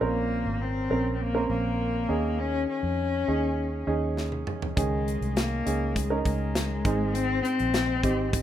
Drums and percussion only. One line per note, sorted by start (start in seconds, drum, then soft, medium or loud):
4.17 snare medium
4.32 high tom medium
4.47 mid tom medium
4.62 floor tom medium
4.77 kick medium
4.77 closed hi-hat medium
5.08 closed hi-hat medium
5.22 closed hi-hat soft
5.37 snare medium
5.37 closed hi-hat medium
5.67 closed hi-hat medium
5.96 kick medium
5.96 closed hi-hat medium
6.25 kick medium
6.25 closed hi-hat medium
6.55 snare medium
6.55 closed hi-hat medium
6.85 kick medium
6.85 closed hi-hat medium
7.15 closed hi-hat medium
7.45 closed hi-hat medium
7.59 closed hi-hat soft
7.74 snare medium
7.74 closed hi-hat medium
8.03 kick medium
8.03 closed hi-hat medium
8.33 kick medium
8.33 closed hi-hat medium